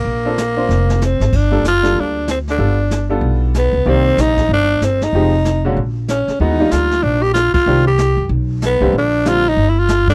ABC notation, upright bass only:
X:1
M:4/4
L:1/8
Q:"Swing" 1/4=189
K:Gm
V:1 name="Upright bass" clef=bass
B,,,4 F,,,3 _A,,, | G,,,2 _G,,,2 D,,4 | G,,,4 =B,,,3 _D,, | C,,2 B,,,2 G,,,2 G,,,2 |
F,,,4 B,,,3 z | E,,2 D,,2 B,,,3 z | C,,3 _G,, =B,,,3 B,,, | B,,,4 G,,,3 G,, |]